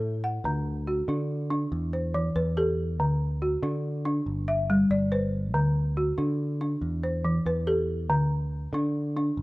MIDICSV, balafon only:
0, 0, Header, 1, 2, 480
1, 0, Start_track
1, 0, Tempo, 424929
1, 508, Time_signature, 12, 3, 24, 8
1, 10643, End_track
2, 0, Start_track
2, 0, Title_t, "Balafon"
2, 0, Program_c, 0, 12
2, 0, Note_on_c, 0, 69, 74
2, 0, Note_on_c, 0, 76, 69
2, 269, Note_off_c, 0, 76, 0
2, 270, Note_off_c, 0, 69, 0
2, 270, Note_on_c, 0, 78, 63
2, 511, Note_on_c, 0, 50, 77
2, 748, Note_off_c, 0, 78, 0
2, 987, Note_on_c, 0, 66, 58
2, 988, Note_off_c, 0, 50, 0
2, 1229, Note_on_c, 0, 62, 69
2, 1687, Note_off_c, 0, 62, 0
2, 1700, Note_on_c, 0, 62, 80
2, 1705, Note_off_c, 0, 66, 0
2, 2183, Note_off_c, 0, 62, 0
2, 2184, Note_on_c, 0, 72, 58
2, 2423, Note_on_c, 0, 52, 83
2, 2663, Note_on_c, 0, 71, 65
2, 2902, Note_off_c, 0, 52, 0
2, 2903, Note_off_c, 0, 72, 0
2, 2904, Note_on_c, 0, 67, 67
2, 2906, Note_on_c, 0, 69, 57
2, 3382, Note_off_c, 0, 71, 0
2, 3383, Note_off_c, 0, 67, 0
2, 3386, Note_on_c, 0, 50, 76
2, 3624, Note_off_c, 0, 69, 0
2, 3862, Note_on_c, 0, 66, 59
2, 3864, Note_off_c, 0, 50, 0
2, 4101, Note_on_c, 0, 62, 72
2, 4565, Note_off_c, 0, 62, 0
2, 4578, Note_on_c, 0, 62, 79
2, 4582, Note_off_c, 0, 66, 0
2, 5061, Note_off_c, 0, 62, 0
2, 5061, Note_on_c, 0, 76, 70
2, 5306, Note_on_c, 0, 55, 85
2, 5544, Note_on_c, 0, 74, 67
2, 5781, Note_on_c, 0, 72, 58
2, 5782, Note_off_c, 0, 76, 0
2, 5783, Note_on_c, 0, 71, 66
2, 5784, Note_off_c, 0, 55, 0
2, 6259, Note_on_c, 0, 50, 84
2, 6263, Note_off_c, 0, 71, 0
2, 6264, Note_off_c, 0, 74, 0
2, 6502, Note_off_c, 0, 72, 0
2, 6742, Note_off_c, 0, 50, 0
2, 6745, Note_on_c, 0, 66, 60
2, 6978, Note_on_c, 0, 62, 75
2, 7449, Note_off_c, 0, 62, 0
2, 7465, Note_off_c, 0, 66, 0
2, 7466, Note_on_c, 0, 62, 77
2, 7705, Note_off_c, 0, 62, 0
2, 7947, Note_on_c, 0, 72, 63
2, 8185, Note_on_c, 0, 52, 77
2, 8432, Note_on_c, 0, 71, 67
2, 8665, Note_on_c, 0, 69, 58
2, 8666, Note_off_c, 0, 52, 0
2, 8667, Note_off_c, 0, 72, 0
2, 8667, Note_on_c, 0, 67, 69
2, 9145, Note_on_c, 0, 50, 90
2, 9148, Note_off_c, 0, 67, 0
2, 9150, Note_off_c, 0, 71, 0
2, 9387, Note_off_c, 0, 69, 0
2, 9627, Note_off_c, 0, 50, 0
2, 9876, Note_on_c, 0, 62, 83
2, 10340, Note_off_c, 0, 62, 0
2, 10355, Note_on_c, 0, 62, 77
2, 10593, Note_off_c, 0, 62, 0
2, 10643, End_track
0, 0, End_of_file